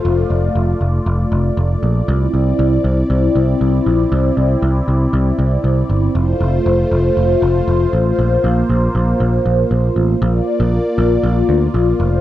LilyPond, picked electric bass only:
\new Staff \with { instrumentName = "Picked electric bass" } { \clef bass \time 4/4 \key bes \lydian \tempo 4 = 118 f,,8 f,,8 f,,8 f,,8 f,,8 f,,8 f,,8 bes,,8 | c,8 c,8 c,8 c,8 c,8 c,8 c,8 bes,,8 | c,8 c,8 c,8 c,8 c,8 c,8 c,8 g,,8 | f,,8 f,,8 f,,8 f,,8 f,,8 f,,8 f,,8 a,,8 |
bes,,8 bes,,8 bes,,8 bes,,8 bes,,8 bes,,8 bes,,8 a,,8 | bes,,8 r16 bes,,8 r16 bes,,8 bes,,8 d,8 bes,,8 f,,8 | }